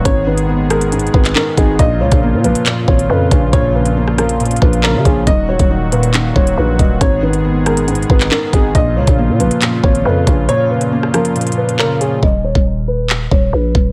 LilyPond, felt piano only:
\new Staff \with { instrumentName = "Felt piano" } { \clef bass \time 4/4 \key ees \minor \tempo 4 = 138 aes,8 ees8 ces'8 aes8 aes,4 ees8 ees'8 | bes,8 des8 bes8 f8 bes,4 des8 des'8 | bes,8 des8 bes8 f8 bes,4 des8 des'8 | ees8 ges8 ees'8 bes,8 ees4 ges8 ees''8 |
aes,8 ees8 ces'8 aes8 aes,4 ees8 ees'8 | bes,8 des8 bes8 f8 bes,4 des8 des'8 | bes,8 des8 bes8 f8 bes,4 des8 des'8 | r1 | }